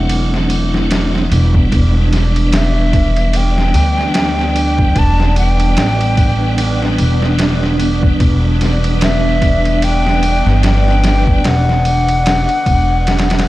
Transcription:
Already playing: upright bass E1, analog synth pad E3 E4, tonewheel organ F#3 A3 C4 D4, flute F#5
0.09 ride
0.34 snare
0.50 ride
0.74 snare
0.91 snare, ride
1.15 snare
1.29 upright bass E1, tonewheel organ E3 G3 B3, ride
1.34 tonewheel organ D4
1.54 kick
1.72 upright bass E1, synth texture B3 B4, analog synth pad D4, kick, ride
2.08 tonewheel organ E3 G3
2.13 tonewheel organ B3 D4, snare, ride
2.36 ride
2.53 flute E5, snare, ride
2.93 kick, ride
3.16 ride
3.33 flute G5, ride
3.58 snare
3.74 upright bass D2, ride
3.98 snare
4.14 snare, ride
4.39 snare
4.56 ride
4.79 kick
4.96 upright bass E1, flute A5, kick, ride
5.20 snare
5.32 tonewheel organ E3 G3
5.36 tonewheel organ B3, flute G5, ride
5.41 tonewheel organ D4
5.60 ride
5.77 upright bass A1, snare, ride
6.01 ride
6.17 kick, ride
6.58 ride
6.82 snare
6.98 upright bass E1, ride
7.22 snare
7.39 snare, ride
7.63 snare
7.78 tonewheel organ E3 G3 B3, ride
7.82 tonewheel organ D4
8.03 kick
8.20 upright bass E1, kick, ride
8.57 tonewheel organ E3 G3
8.61 tonewheel organ B3, snare, ride
8.65 tonewheel organ D4
8.84 ride
9.01 flute E5, snare, ride
9.42 kick, ride
9.65 ride
9.82 flute G5, ride
10.07 snare
10.23 ride
10.46 upright bass G1, snare
10.63 flute G5, snare, ride
10.88 snare
11.04 snare, ride
11.27 kick
11.44 upright bass E1, flute F#5, snare, ride
11.69 snare
11.85 ride
12.09 ride
12.26 snare, ride
12.49 ride
12.66 upright bass E1, kick, ride
13.07 snare, ride
13.19 snare, ride
13.30 snare, ride
13.39 snare, ride

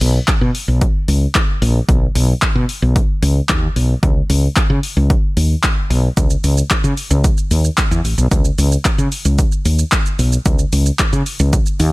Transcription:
0.01 fretless electric bass B1, open hi-hat
0.28 kick, clap, closed hi-hat
0.41 fretless electric bass B2
0.55 open hi-hat
0.68 fretless electric bass B1
0.81 kick, closed hi-hat
1.08 fretless electric bass C#2, open hi-hat
1.35 kick, clap, closed hi-hat
1.62 fretless electric bass A#1, open hi-hat
1.89 fretless electric bass B1, kick, closed hi-hat
2.15 fretless electric bass B1, open hi-hat
2.42 muted fretless electric bass stroke, kick, clap, closed hi-hat
2.55 fretless electric bass B2
2.69 open hi-hat
2.82 fretless electric bass B1
2.96 kick, closed hi-hat
3.22 fretless electric bass C#2, open hi-hat
3.49 fretless electric bass D#2, kick, clap, closed hi-hat
3.76 fretless electric bass B1, open hi-hat
4.03 fretless electric bass C#2, kick, closed hi-hat
4.30 fretless electric bass C#2, open hi-hat
4.56 muted fretless electric bass stroke, kick, clap, closed hi-hat
4.70 fretless electric bass C#3
4.83 open hi-hat
4.97 fretless electric bass C#2
5.10 kick, closed hi-hat
5.37 fretless electric bass D#2, open hi-hat
5.64 kick, clap, closed hi-hat
5.90 fretless electric bass B1, open hi-hat
6.17 fretless electric bass C#2, kick, closed hi-hat, shaker
6.30 shaker
6.44 fretless electric bass C#2, open hi-hat, shaker
6.58 shaker
6.71 muted fretless electric bass stroke, kick, clap, closed hi-hat, shaker
6.84 fretless electric bass C#3, shaker
6.97 open hi-hat, shaker
7.11 fretless electric bass C#2, shaker
7.24 kick, closed hi-hat, shaker
7.37 shaker
7.51 fretless electric bass D#2, open hi-hat, shaker
7.64 shaker
7.78 kick, clap, closed hi-hat, shaker
7.91 fretless electric bass E2, shaker
8.04 fretless electric bass A1, open hi-hat, shaker
8.18 fretless electric bass B1, shaker
8.31 kick, closed hi-hat, shaker
8.45 shaker
8.58 fretless electric bass C#2, open hi-hat, shaker
8.72 shaker
8.85 muted fretless electric bass stroke, kick, clap, closed hi-hat, shaker
8.98 fretless electric bass C#3, shaker
9.12 open hi-hat, shaker
9.25 fretless electric bass C#2, shaker
9.39 kick, closed hi-hat, shaker
9.52 shaker
9.65 fretless electric bass D#2, open hi-hat, shaker
9.79 shaker
9.92 kick, clap, closed hi-hat, shaker
10.06 shaker
10.19 fretless electric bass B1, open hi-hat, shaker
10.32 shaker
10.46 fretless electric bass C#2, kick, closed hi-hat, shaker
10.59 shaker
10.72 fretless electric bass C#2, open hi-hat, shaker
10.86 shaker
10.99 muted fretless electric bass stroke, kick, clap, closed hi-hat, shaker
11.13 fretless electric bass C#3, shaker
11.26 open hi-hat, shaker
11.39 fretless electric bass C#2, shaker
11.53 kick, closed hi-hat, shaker
11.66 shaker
11.80 fretless electric bass D#2, open hi-hat, shaker

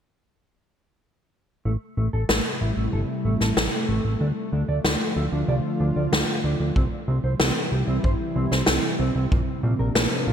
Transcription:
1.65 analog synth bass A1, analog synth pad C3 G3 A3 E4, clean electric guitar A3
1.97 analog synth bass A1, clean electric guitar A3
2.13 analog synth bass A1, clean electric guitar A4
2.29 analog synth bass A1, clean electric guitar A3, snare
2.61 analog synth bass A1, clean electric guitar E4
2.77 analog synth bass A1, clean electric guitar A3
2.93 analog synth bass G1, clean electric guitar A4
3.25 analog synth bass A1, clean electric guitar A3
3.41 analog synth bass A1, clean electric guitar A4, snare
3.57 analog synth bass A1, clean electric guitar A3, snare
3.89 analog synth bass A1, clean electric guitar A3
4.05 analog synth bass A1, clean electric guitar A3
4.20 analog synth bass D2, analog synth pad D3 F3 F4, clean electric guitar D4
4.53 analog synth bass D2, clean electric guitar D4
4.68 analog synth bass D2, clean electric guitar D5
4.84 analog synth bass D2, clean electric guitar D4, snare
5.16 analog synth bass D2, clean electric guitar A4
5.32 analog synth bass D2, clean electric guitar D4
5.48 analog synth bass C2, clean electric guitar D5
5.80 analog synth bass D2, clean electric guitar D4
5.96 analog synth bass D2, clean electric guitar D5
6.12 analog synth bass D2, clean electric guitar D4, snare
6.44 analog synth bass D2, clean electric guitar D4
6.60 analog synth bass D2, clean electric guitar D4
6.76 analog synth bass C2, analog synth pad C3 E3 G3 E4, clean electric guitar C4, kick
7.08 analog synth bass C2, clean electric guitar C4
7.24 analog synth bass C2, clean electric guitar C5
7.40 analog synth bass C2, clean electric guitar C4, snare
7.72 analog synth bass C2, clean electric guitar G4
7.88 analog synth bass C2, clean electric guitar C4
8.04 analog synth bass G1, clean electric guitar C5, kick
8.36 analog synth bass C2, clean electric guitar C4
8.52 analog synth bass C2, clean electric guitar C5, snare
8.66 analog synth bass C2, clean electric guitar C4, snare
8.99 analog synth bass C2, clean electric guitar C4
9.15 analog synth bass C2, clean electric guitar C4
9.31 analog synth bass A#1, analog synth pad F3 A#3 D4, clean electric guitar A#3, kick
9.63 analog synth bass A#1, clean electric guitar A#3
9.79 analog synth bass A#1, clean electric guitar A#4
9.95 analog synth bass A#1, clean electric guitar A#3, snare
10.27 analog synth bass A#1, clean electric guitar F4

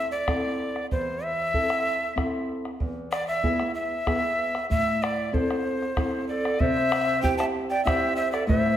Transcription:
Already playing: nylon-string guitar C4 E4 A4, quena E5
0.11 quena D5
0.27 nylon-string guitar C4 E4 A4, bombo rim, bombo low
0.60 bombo rim
0.76 bombo rim
0.91 nylon-string guitar E2, quena C5, bombo low
1.24 quena E5
1.39 bombo rim
1.54 nylon-string guitar C4 E4 A4, bombo rim, bombo low
1.70 bombo rim
2.16 nylon-string guitar C4 E4 A4, bombo rim, bombo low
2.49 bombo rim
2.65 bombo rim
2.80 nylon-string guitar E2, bombo low
3.12 quena D5, bombo rim
3.28 quena E5, bombo rim
3.43 nylon-string guitar B3 E4 G#4, bombo rim, bombo low
3.59 bombo rim
3.75 quena E5
4.06 nylon-string guitar B3 E4 G#4, bombo rim, bombo low
4.39 bombo rim
4.55 bombo rim
4.70 nylon-string guitar A2, quena E5, bombo low
4.88 bombo rim
5.02 quena D5, bombo rim
5.32 nylon-string guitar C4 E4 A4, quena C5, bombo low
5.51 bombo rim
5.82 bombo rim
5.97 nylon-string guitar C4 E4 A4, bombo rim, bombo low
6.28 pan flute A4, quena D5
6.45 bombo rim
6.60 nylon-string guitar C3, pan flute C5, quena E5, bombo low
6.77 bombo rim
6.92 bombo rim
7.08 bombo rim
7.22 nylon-string guitar C4 E4 G4, pan flute C5, quena G5, bombo low
7.38 pan flute E5, quena A5, bombo rim
7.56 bombo rim
7.70 pan flute D5, quena G5, bombo rim
7.85 nylon-string guitar C4 E4 G4, pan flute C5, quena E5, bombo rim, bombo low
8.16 pan flute C5, quena E5
8.32 pan flute A4, quena D5, bombo rim
8.47 nylon-string guitar A2, pan flute C5, quena E5, bombo low
8.66 bombo rim

